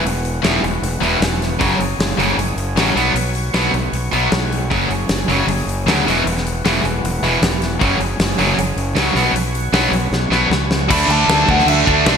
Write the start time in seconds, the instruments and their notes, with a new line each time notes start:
Already playing: tonewheel organ E3 B3 F#4
0.05 fingered electric bass E1, open hi-hat
0.25 open hi-hat
0.42 fingered electric bass E1, distorted electric guitar E2 B2 E3, snare, open hi-hat
0.63 fingered electric bass E1, open hi-hat
0.82 fingered electric bass E1, open hi-hat
1.01 fingered electric bass E1, distorted electric guitar E2 B2 E3, open hi-hat
1.20 fingered electric bass E1, snare, open hi-hat
1.42 snare, open hi-hat
1.58 fingered electric bass F#1, distorted electric guitar F#2 C#3 F#3, tonewheel organ F#3 C#4 G#4, kick, open hi-hat
1.79 fingered electric bass F#1, open hi-hat
1.99 fingered electric bass F#1, snare, open hi-hat
2.18 fingered electric bass F#1, distorted electric guitar F#2 C#3 F#3, open hi-hat
2.37 fingered electric bass F#1, open hi-hat
2.56 fingered electric bass F#1, open hi-hat
2.76 fingered electric bass A1, distorted electric guitar F#2 C#3 F#3, snare, open hi-hat
2.95 fingered electric bass B1, distorted electric guitar B2 F#3 B3, tonewheel organ B3 F#4 C#5, open hi-hat
3.14 fingered electric bass B1, open hi-hat
3.35 open hi-hat
3.54 fingered electric bass B1, distorted electric guitar B2 F#3 B3, snare, open hi-hat
3.74 fingered electric bass B1, open hi-hat
3.93 fingered electric bass B1, open hi-hat
4.13 fingered electric bass B1, distorted electric guitar B2 F#3 B3, open hi-hat
4.32 fingered electric bass B1, snare, open hi-hat
4.52 open hi-hat
4.70 fingered electric bass F#1, distorted electric guitar F#2 C#3 F#3, tonewheel organ F#3 C#4 G#4, kick, open hi-hat
4.90 fingered electric bass F#1, open hi-hat
5.09 fingered electric bass F#1, snare, open hi-hat
5.28 fingered electric bass F#1, distorted electric guitar F#2 C#3 F#3, open hi-hat
5.47 fingered electric bass F#1, open hi-hat
5.66 fingered electric bass F#1, open hi-hat
5.86 fingered electric bass D2, distorted electric guitar F#2 C#3 F#3, snare, open hi-hat
6.05 fingered electric bass E1, distorted electric guitar E2 B2 E3, tonewheel organ E3 B3 F#4, snare, open hi-hat
6.26 fingered electric bass E1, open hi-hat
6.37 snare
6.47 open hi-hat
6.65 fingered electric bass E1, distorted electric guitar E2 B2 E3, snare, open hi-hat
6.84 fingered electric bass E1, open hi-hat
7.04 fingered electric bass E1, open hi-hat
7.22 fingered electric bass E1, distorted electric guitar E2 B2 E3, open hi-hat
7.42 fingered electric bass E1, snare, open hi-hat
7.62 snare, open hi-hat
7.80 fingered electric bass F#1, distorted electric guitar F#2 C#3 F#3, tonewheel organ F#3 C#4 G#4, kick, open hi-hat
7.99 fingered electric bass F#1, open hi-hat
8.19 fingered electric bass F#1, snare, open hi-hat
8.39 fingered electric bass F#1, distorted electric guitar F#2 C#3 F#3, open hi-hat
8.58 fingered electric bass F#1, open hi-hat
8.76 fingered electric bass F#1, open hi-hat
8.95 fingered electric bass C#2, distorted electric guitar F#2 C#3 F#3, snare, open hi-hat
9.15 fingered electric bass B1, distorted electric guitar B2 F#3 B3, tonewheel organ B3 F#4 C#5, snare, open hi-hat
9.33 fingered electric bass B1, open hi-hat
9.55 open hi-hat
9.72 fingered electric bass B1, distorted electric guitar B2 F#3 B3, snare, open hi-hat
9.92 fingered electric bass B1, open hi-hat
10.11 fingered electric bass B1, snare
10.30 fingered electric bass B1, distorted electric guitar B2 F#3 B3, snare
10.50 fingered electric bass C#2, snare
10.71 snare
10.89 fingered electric bass D2, distorted electric guitar D3 A3 D4, tonewheel organ D4 A4 E5, lead electric guitar B5, kick, crash
11.08 fingered electric bass D2, lead electric guitar A5, crash
11.28 fingered electric bass D2, snare, crash
11.48 fingered electric bass D2, lead electric guitar F#5, kick, crash
11.59 snare
11.66 fingered electric bass D2, lead electric guitar E5, crash
11.86 fingered electric bass D2, distorted electric guitar D3 A3 D4, kick, crash
12.05 fingered electric bass B1, distorted electric guitar D3 A3 D4, lead electric guitar D5, snare, crash